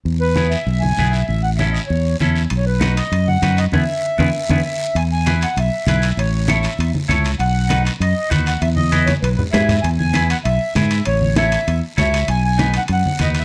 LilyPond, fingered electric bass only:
\new Staff \with { instrumentName = "Fingered electric bass" } { \clef bass \time 4/4 \key e \major \tempo 4 = 196 e,2 b,,4 b,,4 | a,,2 e,4 e,4 | b,,2 fis,4 fis,4 | e,8 r4 e,8 r8 e,8 r4 |
e,2 b,,8 r8 b,,4 | a,,2 e,8 r8 cis,4 | b,,2 fis,8 r8 dis,4 | e,2 b,,8 r8 gis,4 |
e,2 b,,8 r8 gis,4 | a,,2 e,8 r8 cis,4 | b,,2 fis,8 r8 dis,4 | }